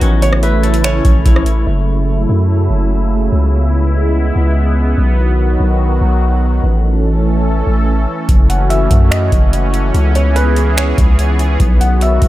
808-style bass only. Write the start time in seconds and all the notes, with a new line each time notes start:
0.01 A1
1.05 A1
1.26 A1
1.67 F#1
2.29 F#2
2.70 F#1
3.32 C#2
4.36 C#2
4.98 B1
5.60 B1
6.01 B1
6.63 A1
7.67 A1
8.29 F#1
8.91 F#2
9.32 F#1
9.94 C#2
10.98 C#2
11.60 B1
12.22 B1